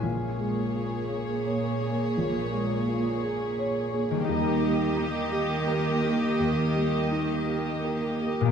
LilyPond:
<<
  \new Staff \with { instrumentName = "Violin section" } { \time 3/4 \key bes \minor \tempo 4 = 84 des''2.~ | des''2. | ees''2.~ | ees''2~ ees''8 r8 | }
  \new Staff \with { instrumentName = "Violin section" } { \time 3/4 \key bes \minor aes'2.~ | aes'2. | g'2.~ | g'2~ g'8 r8 | }
  \new Staff \with { instrumentName = "Grand piano" } { \time 3/4 \key bes \minor bes,,8 aes8 f'8 aes'8 des''8 aes'8 | bes,,8 aes8 f'8 aes'8 des''8 aes'8 | ees,8 g8 ees'8 g'8 bes'8 g'8 | ees,8 g8 ees'8 g'8 bes'8 g'8 | }
  \new Staff \with { instrumentName = "Viola section" } { \time 3/4 \key bes \minor bes2.~ | bes2. | bes2.~ | bes2~ bes8 r8 | }
  \new Staff \with { instrumentName = "Harp" } { \time 3/4 \key bes \minor <bes, aes des' f'>2.~ | <bes, aes des' f'>2. | <ees g bes ees'>2.~ | <ees g bes ees'>2. | }
  \new Staff \with { instrumentName = "Cello section" } { \clef bass \time 3/4 \key bes \minor bes,2.~ | bes,2. | ees2.~ | ees2~ ees8 r8 | }
>>